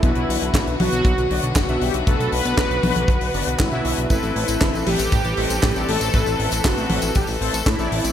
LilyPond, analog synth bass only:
\new Staff \with { instrumentName = "Analog synth bass" } { \clef bass \time 4/4 \key a \dorian \tempo 4 = 118 b,,16 b,,16 b,,16 b,,16 a,,16 b,,16 b,,16 b,,16 b,,16 b,,16 b,,16 b,,16 fis,,16 b,,16 b,,16 b,,16 | b,,16 b,,16 b,,16 b,,16 a,,16 b,,16 b,,16 b,,16 b,,16 b,,16 fis,,16 b,,16 a,,16 b,,16 b,,16 b,,16 | a,,16 a,,16 a,,16 a,,16 g,,16 a,,16 a,,16 a,,16 a,,16 a,,16 a,,16 a,,16 a,16 a,,16 a,,16 a,,16 | a,,16 a,,16 a,,16 a,,16 g,,16 a,,16 a,,16 a,,16 a,,16 a,,16 a,,16 a,,16 a,16 a,,16 a,,16 a,,16 | }